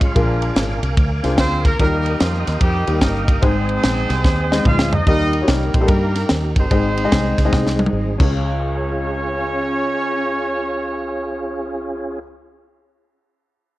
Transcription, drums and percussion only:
0.01 kick loud
0.01 ride bell medium
0.16 kick loud
0.16 ride bell medium
0.42 ride bell medium
0.56 snare loud
0.56 ride bell medium
0.83 ride bell medium
0.97 kick loud
0.97 ride bell medium
1.23 snare soft
1.23 ride bell medium
1.38 kick medium
1.38 snare loud
1.38 ride bell medium
1.65 kick loud
1.65 ride bell medium
1.80 kick loud
1.80 ride bell medium
2.06 ride bell medium
2.20 snare loud
2.20 ride bell medium
2.47 snare soft
2.47 ride bell medium
2.61 kick loud
2.61 ride bell medium
2.88 ride bell medium
3.02 kick medium
3.02 snare loud
3.02 ride bell medium
3.29 kick loud
3.29 ride bell medium
3.43 kick loud
3.43 ride bell medium
3.69 ride bell medium
3.84 snare loud
3.84 ride bell medium
4.10 snare soft
4.10 ride bell medium
4.25 kick loud
4.25 snare medium
4.52 snare medium
4.65 kick loud
4.65 mid tom medium
4.79 snare loud
4.93 floor tom loud
5.07 kick loud
5.07 ride bell medium
5.33 ride bell medium
5.48 kick medium
5.48 snare loud
5.48 ride bell medium
5.74 kick loud
5.74 ride bell medium
5.88 kick loud
5.88 ride bell medium
6.15 snare soft
6.15 ride bell medium
6.29 snare loud
6.29 ride bell medium
6.56 kick loud
6.56 ride bell medium
6.71 kick loud
6.71 ride bell medium
6.97 ride bell medium
7.12 kick loud
7.12 snare loud
7.12 ride bell medium
7.38 kick loud
7.38 snare soft
7.38 ride bell medium
7.53 kick loud
7.53 snare medium
7.66 snare medium
7.79 high tom medium
7.86 high tom medium
8.20 kick loud
8.20 crash loud

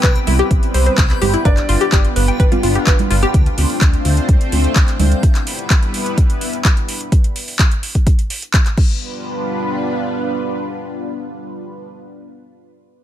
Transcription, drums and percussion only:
0.03 kick loud
0.03 clap loud
0.03 closed hi-hat medium
0.16 closed hi-hat soft
0.27 open hi-hat loud
0.27 low conga medium
0.39 closed hi-hat soft
0.51 kick loud
0.51 closed hi-hat medium
0.63 closed hi-hat soft
0.74 open hi-hat loud
0.86 closed hi-hat soft
0.98 kick loud
0.98 clap loud
0.98 closed hi-hat medium
1.10 clap soft
1.10 closed hi-hat soft
1.22 open hi-hat loud
1.22 low conga medium
1.34 closed hi-hat soft
1.45 kick loud
1.45 closed hi-hat medium
1.57 clap soft
1.57 closed hi-hat soft
1.69 open hi-hat loud
1.81 closed hi-hat soft
1.92 kick loud
1.92 clap loud
1.92 closed hi-hat medium
2.05 closed hi-hat soft
2.16 open hi-hat loud
2.28 closed hi-hat soft
2.40 kick loud
2.40 closed hi-hat medium
2.52 closed hi-hat soft
2.52 high conga medium
2.52 low conga medium
2.63 open hi-hat loud
2.75 closed hi-hat soft
2.87 kick loud
2.87 clap loud
2.87 closed hi-hat medium
2.99 closed hi-hat soft
2.99 low conga medium
3.11 open hi-hat loud
3.23 closed hi-hat soft
3.23 high conga medium
3.34 kick loud
3.34 closed hi-hat medium
3.46 closed hi-hat soft
3.58 open hi-hat loud
3.58 high conga medium
3.70 open hi-hat medium
3.81 kick loud
3.81 clap loud
3.81 closed hi-hat medium
3.94 closed hi-hat soft
4.05 open hi-hat loud
4.17 closed hi-hat soft
4.29 kick loud
4.29 closed hi-hat medium
4.41 closed hi-hat soft
4.52 open hi-hat loud
4.64 closed hi-hat soft
4.76 kick loud
4.76 clap loud
4.76 closed hi-hat medium
4.88 clap soft
4.88 closed hi-hat soft
5.00 open hi-hat loud
5.00 low conga loud
5.12 closed hi-hat soft
5.23 kick loud
5.23 closed hi-hat medium
5.35 clap soft
5.35 closed hi-hat soft
5.47 open hi-hat loud
5.59 closed hi-hat soft
5.70 kick loud
5.70 clap loud
5.70 closed hi-hat medium
5.83 closed hi-hat soft
5.94 open hi-hat loud
6.06 closed hi-hat soft
6.18 kick loud
6.18 closed hi-hat medium
6.30 closed hi-hat soft
6.41 open hi-hat loud
6.53 closed hi-hat soft
6.65 kick loud
6.65 clap loud
6.65 closed hi-hat medium
6.77 closed hi-hat soft
6.89 open hi-hat loud
7.01 closed hi-hat soft
7.12 kick loud
7.12 closed hi-hat medium
7.24 closed hi-hat soft
7.36 open hi-hat loud
7.48 open hi-hat medium
7.59 kick loud
7.59 clap loud
7.59 closed hi-hat medium
7.72 closed hi-hat soft
7.83 open hi-hat loud
7.95 kick medium
7.95 closed hi-hat soft
8.07 kick loud
8.07 closed hi-hat medium
8.19 closed hi-hat soft
8.30 open hi-hat loud
8.42 closed hi-hat soft
8.54 kick loud
8.54 clap loud
8.54 closed hi-hat medium
8.66 clap soft
8.66 closed hi-hat soft
8.77 kick loud
8.77 crash medium

